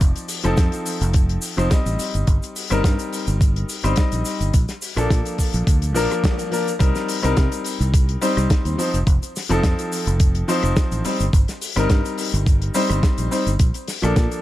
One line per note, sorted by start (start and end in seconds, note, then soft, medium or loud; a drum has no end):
0.00 0.12 F1 loud
0.00 0.41 F3 medium
0.00 0.41 C4 medium
0.00 0.41 D#4 medium
0.00 0.42 D5 medium
0.00 kick loud
0.00 closed hi-hat medium
0.00 shaker medium
0.16 closed hi-hat medium
0.16 shaker soft
0.28 open hi-hat loud
0.28 shaker medium
0.44 0.54 F1 medium
0.44 1.54 F3 medium
0.44 1.54 C4 medium
0.44 1.54 D#4 medium
0.44 1.55 A4 loud
0.44 cross-stick medium
0.44 closed hi-hat medium
0.44 shaker soft
0.57 0.68 F2 medium
0.57 kick loud
0.57 snare loud
0.57 closed hi-hat medium
0.57 shaker medium
0.72 closed hi-hat medium
0.72 shaker soft
0.86 open hi-hat medium
0.86 shaker medium
1.01 1.36 F1 medium
1.01 closed hi-hat medium
1.01 shaker soft
1.13 kick loud
1.13 closed hi-hat medium
1.13 shaker medium
1.29 closed hi-hat medium
1.42 open hi-hat loud
1.42 shaker medium
1.57 1.67 F1 loud
1.57 1.69 F3 medium
1.57 1.69 C4 medium
1.57 1.69 D#4 medium
1.57 1.69 C5 loud
1.57 cross-stick medium
1.57 closed hi-hat medium
1.57 shaker soft
1.70 2.67 G3 medium
1.70 2.67 C4 medium
1.70 2.68 D#4 medium
1.70 kick loud
1.70 snare loud
1.70 closed hi-hat medium
1.70 shaker medium
1.86 1.95 A1 medium
1.86 closed hi-hat medium
1.86 shaker medium
1.99 open hi-hat loud
1.99 shaker medium
2.14 2.24 G1 medium
2.14 closed hi-hat medium
2.14 shaker soft
2.27 2.38 G1 loud
2.27 kick loud
2.27 closed hi-hat loud
2.27 shaker medium
2.42 closed hi-hat medium
2.42 shaker soft
2.56 open hi-hat loud
2.56 shaker medium
2.70 2.80 G1 medium
2.70 3.80 G3 loud
2.70 3.80 C4 medium
2.70 3.81 D#4 medium
2.70 3.81 A#4 loud
2.70 cross-stick medium
2.70 closed hi-hat medium
2.70 shaker soft
2.84 2.95 G2 medium
2.84 kick loud
2.84 snare loud
2.84 closed hi-hat loud
2.84 shaker medium
2.99 closed hi-hat medium
2.99 shaker medium
3.13 open hi-hat medium
3.13 shaker medium
3.27 3.63 G1 loud
3.27 closed hi-hat medium
3.27 shaker medium
3.41 kick loud
3.41 closed hi-hat medium
3.41 shaker medium
3.56 closed hi-hat medium
3.69 open hi-hat loud
3.69 shaker medium
3.84 3.93 G1 loud
3.84 3.95 G3 medium
3.84 3.95 C4 medium
3.84 3.95 D#4 medium
3.84 3.96 C5 loud
3.84 cross-stick medium
3.84 closed hi-hat medium
3.84 shaker medium
3.96 4.52 G3 medium
3.96 4.52 C4 medium
3.96 4.53 D#4 medium
3.96 4.53 D#5 medium
3.96 kick loud
3.96 snare loud
3.96 closed hi-hat loud
3.96 shaker medium
4.12 4.22 A#1 medium
4.12 closed hi-hat medium
4.12 shaker soft
4.25 open hi-hat medium
4.25 shaker loud
4.41 4.50 G1 medium
4.41 closed hi-hat medium
4.41 shaker soft
4.54 4.65 A#1 loud
4.54 kick loud
4.54 closed hi-hat loud
4.54 shaker medium
4.69 snare soft
4.69 closed hi-hat medium
4.69 shaker soft
4.82 open hi-hat loud
4.82 shaker medium
4.96 5.06 A#1 loud
4.96 5.92 F3 medium
4.96 5.93 A#3 medium
4.96 5.93 D4 medium
4.96 5.93 A4 loud
4.96 cross-stick medium
4.96 closed hi-hat soft
4.96 shaker medium
5.10 5.21 A#2 medium
5.10 kick loud
5.10 snare loud
5.10 closed hi-hat loud
5.10 shaker medium
5.25 closed hi-hat medium
5.25 shaker medium
5.38 kick medium
5.38 open hi-hat medium
5.38 shaker medium
5.53 5.66 A#1 loud
5.53 closed hi-hat medium
5.53 shaker soft
5.67 5.95 D2 medium
5.67 kick loud
5.67 closed hi-hat medium
5.67 shaker medium
5.82 closed hi-hat medium
5.82 shaker soft
5.95 6.06 A#1 medium
5.95 6.48 F3 loud
5.95 6.49 A#3 medium
5.95 6.49 D4 medium
5.95 6.49 A#4 loud
5.95 open hi-hat loud
5.95 shaker medium
6.11 cross-stick medium
6.11 closed hi-hat medium
6.11 shaker soft
6.24 kick loud
6.24 snare loud
6.24 closed hi-hat medium
6.24 shaker medium
6.39 closed hi-hat medium
6.39 shaker soft
6.51 6.70 F3 medium
6.51 6.70 A#3 medium
6.51 6.70 D4 medium
6.51 6.70 A#4 medium
6.51 open hi-hat medium
6.51 shaker medium
6.68 closed hi-hat medium
6.68 shaker medium
6.79 6.91 C2 loud
6.79 7.17 G3 loud
6.79 7.17 C4 medium
6.79 7.18 D#4 medium
6.79 7.18 A#4 loud
6.79 kick loud
6.79 closed hi-hat loud
6.79 shaker medium
6.95 snare soft
6.95 closed hi-hat medium
6.95 shaker soft
7.08 open hi-hat loud
7.08 shaker medium
7.22 7.33 C2 medium
7.22 8.19 G3 loud
7.22 8.19 C4 medium
7.22 8.19 D#4 medium
7.22 8.20 A#4 loud
7.22 cross-stick medium
7.22 closed hi-hat soft
7.22 shaker soft
7.37 7.48 C3 loud
7.37 kick loud
7.37 snare loud
7.37 closed hi-hat loud
7.37 shaker medium
7.52 closed hi-hat medium
7.52 shaker medium
7.64 open hi-hat medium
7.64 shaker medium
7.80 8.15 C2 loud
7.80 closed hi-hat medium
7.80 shaker medium
7.94 kick loud
7.94 closed hi-hat loud
7.94 shaker medium
8.09 closed hi-hat medium
8.21 8.75 G3 loud
8.21 8.75 C4 medium
8.21 8.75 D#4 medium
8.21 8.76 C5 loud
8.21 open hi-hat loud
8.21 shaker medium
8.37 8.46 C2 loud
8.37 cross-stick medium
8.37 closed hi-hat medium
8.37 shaker medium
8.50 kick loud
8.50 snare loud
8.50 closed hi-hat loud
8.50 shaker medium
8.65 8.74 D#2 medium
8.65 closed hi-hat medium
8.65 shaker soft
8.78 8.96 F3 medium
8.78 8.96 C4 medium
8.78 8.97 D#4 medium
8.78 8.97 C5 medium
8.78 open hi-hat loud
8.78 shaker medium
8.94 9.03 F1 medium
8.94 closed hi-hat medium
8.94 shaker soft
9.07 9.17 F1 loud
9.07 kick loud
9.07 closed hi-hat loud
9.07 shaker medium
9.23 closed hi-hat medium
9.23 shaker medium
9.36 snare soft
9.36 open hi-hat loud
9.36 shaker medium
9.49 9.59 F1 medium
9.49 10.45 F3 loud
9.49 10.46 C4 medium
9.49 10.46 D#4 medium
9.49 10.46 A4 loud
9.49 cross-stick medium
9.49 closed hi-hat soft
9.49 shaker soft
9.64 9.74 F2 loud
9.64 kick loud
9.64 snare loud
9.64 closed hi-hat loud
9.64 shaker medium
9.79 closed hi-hat medium
9.79 shaker soft
9.92 open hi-hat loud
9.92 shaker medium
10.07 10.42 F1 loud
10.07 closed hi-hat medium
10.07 shaker medium
10.20 kick loud
10.20 closed hi-hat loud
10.20 shaker medium
10.35 closed hi-hat medium
10.48 11.02 F3 loud
10.48 11.02 C4 medium
10.48 11.02 D#4 medium
10.48 11.02 C5 loud
10.48 open hi-hat loud
10.48 shaker medium
10.63 10.73 F1 loud
10.63 cross-stick medium
10.63 closed hi-hat medium
10.63 shaker medium
10.76 kick loud
10.76 snare loud
10.76 closed hi-hat medium
10.76 shaker medium
10.92 11.01 A1 medium
10.92 closed hi-hat medium
10.92 shaker medium
11.05 11.23 G3 medium
11.05 11.23 C4 medium
11.05 11.23 D#4 medium
11.05 11.23 C5 medium
11.05 open hi-hat loud
11.05 shaker medium
11.20 11.29 G1 medium
11.20 closed hi-hat medium
11.20 shaker medium
11.33 11.44 G1 loud
11.33 kick loud
11.33 closed hi-hat loud
11.33 shaker medium
11.48 snare soft
11.48 closed hi-hat medium
11.48 shaker soft
11.61 open hi-hat loud
11.61 shaker medium
11.76 11.86 G1 loud
11.76 12.72 G3 loud
11.76 12.72 C4 medium
11.76 12.72 D#4 medium
11.76 12.73 A#4 loud
11.76 cross-stick medium
11.76 closed hi-hat medium
11.76 shaker soft
11.89 12.00 G2 loud
11.89 kick loud
11.89 snare loud
11.89 closed hi-hat loud
11.89 shaker medium
12.05 closed hi-hat medium
12.05 shaker soft
12.18 open hi-hat loud
12.18 shaker medium
12.33 12.69 G1 loud
12.33 closed hi-hat medium
12.33 shaker soft
12.46 kick loud
12.46 closed hi-hat medium
12.46 shaker medium
12.62 closed hi-hat medium
12.74 13.28 G3 loud
12.74 13.28 C4 loud
12.74 13.28 D#4 loud
12.74 13.29 C5 loud
12.74 open hi-hat loud
12.74 shaker medium
12.90 12.99 G1 loud
12.90 cross-stick medium
12.90 closed hi-hat medium
12.90 shaker medium
13.03 kick loud
13.03 snare loud
13.03 closed hi-hat medium
13.03 shaker medium
13.18 13.27 A#1 medium
13.18 closed hi-hat medium
13.18 shaker medium
13.31 13.49 G3 medium
13.31 13.49 C4 medium
13.31 13.50 D#4 medium
13.31 13.50 C5 medium
13.31 open hi-hat loud
13.31 shaker medium
13.47 13.56 G1 medium
13.47 closed hi-hat soft
13.47 shaker medium
13.59 13.70 A#1 loud
13.59 kick loud
13.59 closed hi-hat loud
13.59 shaker medium
13.74 closed hi-hat medium
13.74 shaker soft
13.88 snare soft
13.88 open hi-hat loud
13.88 shaker medium
14.02 14.12 A#1 medium
14.02 14.42 F3 medium
14.02 14.42 A#3 medium
14.02 14.42 D4 medium
14.02 14.42 A4 loud
14.02 cross-stick medium
14.02 closed hi-hat soft
14.02 shaker soft
14.16 14.27 A#2 loud
14.16 kick loud
14.16 snare loud
14.16 closed hi-hat medium
14.16 shaker medium
14.31 closed hi-hat medium
14.31 shaker medium